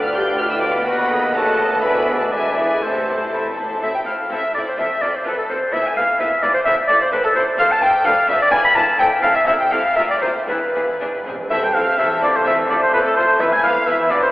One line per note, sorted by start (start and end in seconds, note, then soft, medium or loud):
0.00 0.85 D2 medium
0.00 0.38 D3 medium
0.00 0.14 D4 medium
0.00 0.14 B4 medium
0.00 0.85 B4 soft
0.00 0.14 D5 soft
0.00 0.87 F5 medium
0.00 0.88 G5 medium
0.00 0.16 F6 medium
0.05 0.10 F4 medium
0.15 0.40 F4 soft
0.15 0.39 G4 medium
0.15 0.39 B4 soft
0.15 0.39 D5 soft
0.15 0.39 F5 soft
0.15 0.39 G6 medium
0.38 1.33 B2 medium
0.38 0.63 D4 medium
0.38 0.52 F4 medium
0.38 0.63 B4 medium
0.38 0.63 D5 medium
0.38 0.43 F6 medium
0.51 0.58 E4 medium
0.51 0.63 E6 medium
0.62 0.69 D4 medium
0.62 0.87 F4 soft
0.62 0.87 B4 medium
0.62 0.87 D5 soft
0.62 0.87 F5 soft
0.62 0.74 D6 medium
0.74 1.34 B3 medium
0.74 1.34 B5 medium
0.85 1.83 D#2 medium
0.85 1.09 F#4 medium
0.85 1.09 B4 medium
0.85 0.97 B4 medium
0.85 1.09 D#5 medium
0.85 1.33 F#5 medium
0.85 1.09 F#5 medium
0.85 1.37 F#5 medium
1.10 1.38 G#4 medium
1.10 1.34 A4 soft
1.10 1.34 B4 medium
1.10 1.33 D#5 soft
1.10 1.35 D#5 soft
1.34 1.82 C#3 medium
1.34 1.84 A3 medium
1.34 1.59 F#4 medium
1.34 1.82 A4 medium
1.34 1.59 B4 medium
1.34 1.57 D#5 medium
1.34 1.81 F#5 medium
1.34 1.59 F#5 medium
1.34 1.83 A5 medium
1.58 1.83 A4 medium
1.58 1.83 B4 medium
1.58 1.83 D#5 soft
1.58 1.83 D#5 medium
1.82 2.31 D2 medium
1.82 2.32 D2 medium
1.82 2.52 B2 medium
1.82 2.20 B3 medium
1.82 2.06 E4 medium
1.82 2.06 B4 medium
1.82 2.29 B4 medium
1.82 2.06 D5 soft
1.82 2.33 E5 medium
1.82 2.06 E5 soft
1.82 2.29 G#5 medium
1.82 2.20 B5 medium
2.07 2.32 G#4 soft
2.07 2.33 B4 soft
2.07 2.32 D5 soft
2.07 2.33 D5 soft
2.20 2.26 A3 medium
2.20 2.25 A5 medium
2.31 2.82 E1 medium
2.31 2.82 E2 medium
2.31 2.57 G#3 medium
2.31 2.55 D4 soft
2.31 2.55 B4 soft
2.31 2.84 B4 soft
2.31 2.84 D5 medium
2.31 2.81 E5 medium
2.31 2.56 E5 soft
2.31 2.56 G#5 medium
2.56 2.70 E3 medium
2.56 2.82 E4 soft
2.56 2.82 G#4 soft
2.56 2.83 D5 soft
2.56 2.70 E5 medium
2.56 2.83 G#5 soft
2.70 2.83 G#3 medium
2.70 2.82 G#5 soft
2.82 3.62 A1 medium
2.82 3.62 A2 soft
2.82 3.53 C3 medium
2.82 3.31 A3 medium
2.82 3.06 C4 medium
2.82 3.06 A4 soft
2.82 3.58 A4 medium
2.82 3.06 A4 soft
2.82 3.58 C5 soft
2.82 3.10 E5 medium
2.82 3.06 E5 soft
2.82 3.33 A5 medium
2.90 2.98 A2 soft
2.99 3.06 A2 soft
3.07 3.13 A2 soft
3.07 3.33 E4 soft
3.07 3.32 C5 soft
3.07 3.33 C5 soft
3.07 3.33 A5 soft
3.14 3.21 A2 soft
3.22 3.29 A2 soft
3.30 3.36 A2 soft
3.30 3.57 C4 soft
3.30 3.57 A4 soft
3.30 3.58 A4 soft
3.30 3.58 E5 soft
3.30 3.59 B5 medium
3.38 3.44 A2 medium
3.45 3.52 A2 medium
3.53 3.60 A2 medium
3.57 3.67 A2 medium
3.57 3.81 E4 soft
3.57 3.82 C5 soft
3.57 3.82 A5 medium
3.57 3.82 A5 soft
3.68 3.76 A2 medium
3.82 3.90 A1 medium
3.82 3.90 A2 medium
3.82 3.90 C4 soft
3.82 3.90 E4 medium
3.82 3.90 A4 medium
3.82 3.93 E5 medium
3.82 3.88 E5 medium
3.94 4.06 G5 medium
3.94 4.00 G5 medium
4.06 4.15 A1 medium
4.06 4.15 A2 medium
4.06 4.14 C4 soft
4.06 4.14 E4 soft
4.06 4.14 A4 soft
4.06 4.32 F5 medium
4.06 4.15 F5 medium
4.30 4.38 A1 medium
4.30 4.39 A2 medium
4.30 4.38 C4 medium
4.30 4.38 E4 soft
4.30 4.39 A4 medium
4.30 4.54 E5 medium
4.54 4.63 A1 medium
4.54 4.62 A2 medium
4.54 4.63 C4 medium
4.54 4.63 E4 medium
4.54 4.63 A4 soft
4.54 4.60 D5 medium
4.54 4.67 D5 medium
4.67 4.79 C5 medium
4.67 4.80 C5 medium
4.78 4.87 F1 medium
4.78 4.86 F2 medium
4.78 4.86 C4 medium
4.78 4.86 F4 medium
4.78 4.87 A4 soft
4.78 5.03 E5 medium
4.78 5.02 E5 medium
5.01 5.10 F1 medium
5.01 5.10 F2 medium
5.01 5.09 C4 soft
5.01 5.10 F4 soft
5.01 5.11 A4 medium
5.01 5.17 D5 medium
5.01 5.14 D5 medium
5.14 5.26 C5 medium
5.14 5.25 C5 medium
5.25 5.34 F1 medium
5.25 5.34 F2 medium
5.25 5.33 C4 medium
5.25 5.33 F4 medium
5.25 5.34 A4 medium
5.25 5.37 B4 medium
5.25 5.38 B4 medium
5.38 5.43 A4 medium
5.38 5.50 A4 medium
5.49 5.57 F1 medium
5.49 5.57 F2 medium
5.49 5.58 C4 soft
5.49 5.58 F4 soft
5.49 5.57 A4 soft
5.49 5.74 C5 medium
5.49 5.59 C5 medium
5.72 5.81 G#1 medium
5.72 5.81 G#2 medium
5.72 5.81 B3 medium
5.72 5.81 E4 medium
5.72 5.80 B4 medium
5.72 5.88 E5 medium
5.72 5.85 E5 medium
5.85 5.97 G#5 medium
5.85 5.96 G#5 medium
5.96 6.05 G#1 medium
5.96 6.04 G#2 medium
5.96 6.04 B3 soft
5.96 6.04 E4 soft
5.96 6.04 B4 soft
5.96 6.20 F5 medium
5.96 6.21 F5 medium
6.19 6.28 G#1 medium
6.19 6.28 G#2 medium
6.19 6.27 B3 medium
6.19 6.27 E4 medium
6.19 6.28 B4 medium
6.19 6.44 E5 medium
6.19 6.28 E5 medium
6.42 6.51 G#1 medium
6.42 6.50 G#2 medium
6.42 6.50 B3 medium
6.42 6.50 E4 soft
6.42 6.51 B4 medium
6.42 6.53 D5 medium
6.42 6.48 D5 medium
6.54 6.59 C5 medium
6.54 6.66 C5 medium
6.65 6.74 A1 medium
6.65 6.74 A2 medium
6.65 6.73 C4 medium
6.65 6.73 E4 medium
6.65 6.73 A4 medium
6.65 6.76 E5 loud
6.65 6.74 E5 medium
6.87 6.97 A1 medium
6.87 6.96 A2 medium
6.87 6.97 C4 soft
6.87 6.97 E4 medium
6.87 6.97 A4 medium
6.87 7.00 D5 medium
6.87 6.94 D5 medium
7.00 7.12 C5 medium
7.12 7.20 A1 medium
7.12 7.20 A2 medium
7.12 7.21 C4 medium
7.12 7.20 E4 medium
7.12 7.20 A4 medium
7.12 7.17 B4 medium
7.12 7.24 B4 medium
7.23 7.28 A4 medium
7.23 7.35 A4 medium
7.35 7.44 A1 medium
7.35 7.43 A2 medium
7.35 7.43 C4 medium
7.35 7.43 E4 medium
7.35 7.44 A4 medium
7.35 7.44 C5 medium
7.35 7.46 C5 medium
7.58 7.67 F1 medium
7.58 7.66 F2 medium
7.58 7.66 C4 medium
7.58 7.67 A4 medium
7.58 7.67 C5 medium
7.58 7.63 F5 medium
7.58 7.73 F5 loud
7.71 7.82 A5 medium
7.71 7.84 A5 loud
7.81 7.90 F1 medium
7.81 7.89 F2 medium
7.81 7.90 C4 medium
7.81 7.90 A4 medium
7.81 7.90 C5 medium
7.81 8.05 G5 medium
7.81 8.07 G5 loud
8.04 8.13 D2 medium
8.04 8.12 D4 medium
8.04 8.12 A4 medium
8.04 8.13 B4 medium
8.04 8.28 F5 medium
8.04 8.30 F5 medium
8.28 8.36 D2 medium
8.28 8.36 D4 medium
8.28 8.36 A4 medium
8.28 8.36 B4 medium
8.28 8.40 E5 medium
8.40 8.52 D5 medium
8.40 8.51 D5 medium
8.51 8.60 E1 medium
8.51 8.59 E2 medium
8.51 8.59 D4 medium
8.51 8.59 E4 medium
8.51 8.59 B4 medium
8.51 8.63 G#5 loud
8.51 8.64 G#5 medium
8.63 8.75 B5 medium
8.63 8.77 B5 loud
8.75 8.83 E1 medium
8.75 8.83 E2 medium
8.75 8.83 D4 medium
8.75 8.83 E4 medium
8.75 8.83 B4 medium
8.75 8.83 A5 medium
8.75 9.00 A5 loud
8.98 9.07 A1 medium
8.98 9.08 A2 medium
8.98 9.07 C4 medium
8.98 9.07 E4 medium
8.98 9.06 A4 medium
8.98 9.22 G5 medium
8.98 9.07 G5 medium
9.22 9.31 A1 medium
9.22 9.31 A2 medium
9.22 9.30 C4 medium
9.22 9.31 E4 medium
9.22 9.31 A4 medium
9.22 9.35 F5 loud
9.22 9.28 F5 medium
9.34 9.39 E5 medium
9.34 9.46 E5 medium
9.46 9.55 C2 medium
9.46 9.55 C4 medium
9.46 9.55 E4 medium
9.46 9.54 A4 medium
9.46 9.52 E5 medium
9.46 9.53 E5 loud
9.60 9.72 G5 medium
9.60 9.73 G5 medium
9.71 9.80 C2 medium
9.71 9.79 C4 medium
9.71 9.79 E4 medium
9.71 9.80 A4 medium
9.71 9.96 F5 medium
9.96 10.04 D2 medium
9.96 10.05 D2 medium
9.96 10.04 A#3 medium
9.96 10.05 F4 medium
9.96 10.04 A#4 medium
9.96 10.02 E5 medium
9.96 10.09 E5 medium
10.09 10.21 D5 medium
10.21 10.30 D2 medium
10.21 10.29 A#3 medium
10.21 10.29 F4 medium
10.21 10.29 A#4 medium
10.21 10.48 C5 medium
10.21 10.34 C5 medium
10.47 10.56 E1 medium
10.47 10.56 E2 medium
10.47 10.56 E2 soft
10.47 10.56 B3 medium
10.47 10.57 E4 medium
10.47 10.55 G#4 medium
10.47 11.24 B4 medium
10.47 11.25 B4 medium
10.57 10.64 E2 soft
10.65 10.72 E2 soft
10.73 10.82 E1 medium
10.73 10.80 E2 soft
10.73 10.82 E2 medium
10.73 10.82 B3 soft
10.73 10.82 E4 soft
10.73 10.82 G#4 medium
10.82 10.88 E2 soft
10.89 10.96 E2 soft
10.97 11.08 E1 medium
10.97 11.04 E2 medium
10.97 11.09 E2 medium
10.97 11.08 D4 medium
10.97 11.08 G#4 medium
11.06 11.12 E2 medium
11.14 11.20 E2 medium
11.22 11.28 E2 medium
11.26 11.34 E1 medium
11.26 11.34 E2 medium
11.26 11.36 E2 medium
11.26 11.34 C4 medium
11.26 11.34 G#4 soft
11.37 11.44 E2 medium
11.50 11.59 A1 medium
11.50 11.55 E3 medium
11.50 11.95 A3 medium
11.50 13.36 C4 medium
11.50 11.59 C4 medium
11.50 11.59 E4 medium
11.50 13.36 A4 medium
11.50 11.59 A4 medium
11.50 11.96 C5 medium
11.50 11.62 E5 medium
11.50 11.56 E5 medium
11.50 11.96 A5 medium
11.62 11.75 G3 medium
11.62 11.74 G5 medium
11.62 11.76 G5 medium
11.74 11.83 A1 medium
11.74 11.83 F3 medium
11.74 11.83 C4 medium
11.74 11.83 E4 medium
11.74 11.83 A4 soft
11.74 11.98 F5 medium
11.98 12.07 A1 medium
11.98 12.22 E3 medium
11.98 12.45 A3 medium
11.98 12.06 C4 medium
11.98 12.06 E4 medium
11.98 12.07 A4 medium
11.98 12.45 C5 medium
11.98 12.09 E5 medium
11.98 12.23 E5 medium
11.98 12.45 A5 medium
12.22 12.30 A1 medium
12.22 12.35 D3 medium
12.22 12.30 C4 medium
12.22 12.30 E4 medium
12.22 12.31 A4 medium
12.22 12.27 D5 medium
12.22 12.37 D5 medium
12.34 12.39 C3 medium
12.34 12.39 C5 medium
12.34 12.46 C5 medium
12.46 12.54 F1 medium
12.46 12.70 E3 medium
12.46 13.41 A3 medium
12.46 12.54 C4 medium
12.46 12.55 F4 medium
12.46 12.56 A4 medium
12.46 13.38 C5 medium
12.46 12.54 E5 medium
12.46 12.58 E5 medium
12.46 13.42 A5 medium
12.70 12.78 F1 medium
12.70 12.82 D3 medium
12.70 12.78 C4 medium
12.70 12.78 F4 medium
12.70 12.80 A4 medium
12.70 12.74 D5 medium
12.70 12.82 D5 medium
12.81 12.93 C3 medium
12.81 12.93 C5 medium
12.93 13.01 F1 medium
12.93 13.05 B2 medium
12.93 13.02 C4 medium
12.93 13.02 F4 medium
12.93 13.02 A4 medium
12.93 13.05 B4 medium
12.93 12.99 B4 medium
13.05 13.10 A2 medium
13.05 13.09 A4 medium
13.05 13.16 A4 medium
13.16 13.25 F1 medium
13.16 13.25 C3 medium
13.16 13.25 C4 soft
13.16 13.25 F4 medium
13.16 13.26 A4 medium
13.16 13.40 C5 medium
13.16 13.42 C5 medium
13.39 13.48 G#1 medium
13.39 13.86 E3 medium
13.39 13.45 E3 medium
13.39 13.49 B3 medium
13.39 14.32 B3 medium
13.39 13.49 E4 medium
13.39 14.32 E4 medium
13.39 13.86 B4 medium
13.39 13.49 B4 medium
13.39 13.44 E5 medium
13.39 13.54 E5 medium
13.39 13.86 B5 medium
13.51 13.57 G#3 medium
13.51 13.63 G#5 medium
13.51 13.62 G#5 medium
13.63 13.72 G#1 medium
13.63 13.72 F3 medium
13.63 13.72 B3 medium
13.63 13.72 E4 medium
13.63 13.72 B4 medium
13.63 13.88 F5 medium
13.63 13.87 F5 medium
13.86 13.95 G#1 medium
13.86 14.32 E3 medium
13.86 14.10 E3 medium
13.86 13.95 B3 medium
13.86 13.95 E4 medium
13.86 14.32 B4 medium
13.86 13.95 B4 medium
13.86 14.10 E5 medium
13.86 14.12 E5 medium
13.86 14.32 B5 medium
14.10 14.18 G#1 medium
14.10 14.22 D3 medium
14.10 14.18 B3 medium
14.10 14.18 E4 medium
14.10 14.18 B4 medium
14.10 14.15 D5 medium
14.10 14.22 D5 medium
14.21 14.32 C3 medium
14.21 14.26 C5 medium
14.21 14.28 C5 medium